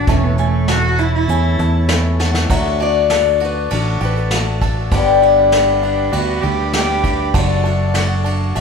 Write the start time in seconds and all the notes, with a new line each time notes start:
Already playing: F#4 A4 A5
0.07 E1 E3 A3 C#4 E4 A4 C#5, kick, closed hi-hat
0.24 B3
0.38 A3 C#4 A4, closed hi-hat
0.68 F#4 A4, snare, closed hi-hat
0.98 E4, closed hi-hat
1.15 E4
1.27 E2 E3 A3 C#4 A4, closed hi-hat
1.59 E2 A4, closed hi-hat
1.88 E3 A3 C#4 E4 A4, snare, closed hi-hat
2.20 A4 F#5, snare
2.34 snare
2.48 D2 D3 F#3 A3 D4 F#4 D5 E5 A5, kick, ride
2.80 D4 D5, ride
3.10 A4, snare, ride
3.40 F#4, ride
3.45 B4
3.70 A1 F#3 A3 D4 F#4 A4, ride
4.00 A1 G4, ride
4.05 B4
4.16 A4
4.31 F#3 A3 D4 F#4, snare, ride
4.35 A4
4.61 A4, kick, ride
4.91 G1 G2 D3 G3 B3 D4 G4 D5 B5, kick, ride
5.22 G3 F#5, ride
5.52 snare, ride
5.81 B3 D4, ride
6.12 D2 G3 B3 D4 F#4, ride
6.43 D2 G4, ride
6.73 G3 B3 D4 G4, snare, ride
7.04 G4, kick, ride
7.34 F#1 D3 F#3 A3 D4 F#4 A4 D5 A5, kick, ride
7.64 A3 D4 A4, ride
7.94 F#4 F#5, snare, ride
8.24 D4, ride
8.55 A1 F#3 A3 D4 E5, ride